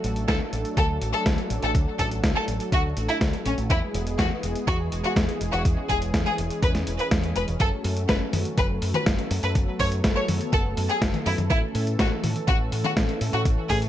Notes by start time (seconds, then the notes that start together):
Already playing: F#3 A3 D4 A4
0.04 A1, closed hi-hat
0.16 closed hi-hat
0.28 D2 A4, kick, snare, closed hi-hat
0.53 A1, closed hi-hat
0.65 closed hi-hat
0.77 D2 A4, kick, closed hi-hat
1.01 A1, closed hi-hat
1.14 A4, closed hi-hat
1.26 D2, kick, snare, closed hi-hat
1.38 closed hi-hat
1.50 A1, closed hi-hat
1.62 A1 A4, closed hi-hat
1.75 D2, kick, closed hi-hat
1.99 A1 A4, kick, closed hi-hat
2.11 closed hi-hat
2.23 D2, kick, snare, closed hi-hat
2.36 A4
2.48 A1, closed hi-hat
2.60 closed hi-hat
2.72 D2 F#4, kick, closed hi-hat
2.97 A1, closed hi-hat
3.09 E4, closed hi-hat
3.21 D2, kick, snare, closed hi-hat
3.33 closed hi-hat
3.46 A1 C#4, closed hi-hat
3.58 A1, closed hi-hat
3.70 E2 E3 G#3 B3 E4 G#4, kick, closed hi-hat
3.94 E1, closed hi-hat
4.07 closed hi-hat
4.19 E2 F#4, kick, snare, closed hi-hat
4.43 E1, closed hi-hat
4.55 closed hi-hat
4.67 E2 F#4, kick, closed hi-hat
4.92 E1, closed hi-hat
5.04 F#4, closed hi-hat
5.16 E2, kick, snare, closed hi-hat
5.29 closed hi-hat
5.41 E1, closed hi-hat
5.53 E1 F#4, closed hi-hat
5.65 E2 C#4, kick, closed hi-hat
5.89 E1 G#4, kick, closed hi-hat
6.02 closed hi-hat
6.14 E2, kick, snare, closed hi-hat
6.26 G#4, closed hi-hat
6.38 E1, closed hi-hat
6.50 closed hi-hat
6.63 E2 B4, kick, closed hi-hat
6.75 snare, closed hi-hat
6.87 E1, closed hi-hat
6.99 B4, closed hi-hat
7.11 E2, kick, snare, closed hi-hat
7.23 closed hi-hat
7.36 E1 B4, closed hi-hat
7.48 E1, closed hi-hat
7.60 F#1 F#3 A3 A4, kick, closed hi-hat
7.84 F#2, open hi-hat
7.97 closed hi-hat
8.09 F#1 B4, kick, snare, closed hi-hat
8.33 F#2, open hi-hat, high tom
8.45 closed hi-hat
8.58 F#1 B4, kick, closed hi-hat
8.82 F#2, open hi-hat
8.94 B4, closed hi-hat, high tom
9.06 F#1, kick, snare, closed hi-hat
9.19 closed hi-hat
9.31 F#2, open hi-hat
9.43 F#2 B4, closed hi-hat
9.55 F#1 B3, kick, closed hi-hat
9.80 F#2 C#5, kick, open hi-hat
9.92 closed hi-hat
10.04 F#1, kick, snare, closed hi-hat
10.16 C#5
10.28 F#2, open hi-hat, high tom
10.41 closed hi-hat
10.53 F#1 A4, kick, closed hi-hat
10.77 F#2, open hi-hat
10.89 G#4, closed hi-hat
11.02 F#1, kick, snare, closed hi-hat
11.14 closed hi-hat, high tom
11.26 F#2 E4, open hi-hat
11.38 F#2, closed hi-hat, high tom
11.50 A1 E3 C#4 E4, kick, closed hi-hat
11.75 A2, open hi-hat
11.87 closed hi-hat
11.99 A1 F#4, kick, snare, closed hi-hat
12.23 A2, open hi-hat, high tom
12.36 closed hi-hat
12.48 A1 F#4, kick, closed hi-hat
12.72 A2, open hi-hat
12.84 F#4, closed hi-hat, high tom
12.97 A1, kick, snare, closed hi-hat
13.09 closed hi-hat
13.21 A2, open hi-hat
13.33 A2 F#4, closed hi-hat
13.45 A1, kick, closed hi-hat
13.70 A2 G#4, kick, open hi-hat
13.82 closed hi-hat